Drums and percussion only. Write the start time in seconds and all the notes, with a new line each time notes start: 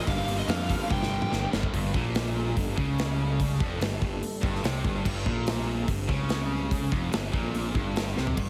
0.07 kick, open hi-hat
0.28 open hi-hat
0.49 snare, open hi-hat
0.70 kick, open hi-hat
0.90 kick, high tom
1.02 snare
1.22 mid tom
1.33 snare
1.53 snare
1.63 kick
1.74 kick, open hi-hat
1.94 kick
2.15 snare, open hi-hat
2.57 kick, open hi-hat
2.78 kick
2.98 snare, open hi-hat
3.40 kick, open hi-hat
3.60 kick
3.81 snare, open hi-hat
4.02 kick
4.23 open hi-hat
4.43 kick
4.55 snare
4.64 snare, open hi-hat
4.85 kick
5.05 kick, crash
5.26 kick
5.47 snare, open hi-hat
5.88 kick, open hi-hat
6.09 kick
6.29 snare, open hi-hat
6.71 kick, open hi-hat
6.92 kick
7.13 snare, open hi-hat
7.33 kick
7.55 open hi-hat
7.75 kick
7.96 snare, open hi-hat
8.08 snare
8.17 snare
8.27 floor tom
8.37 kick, crash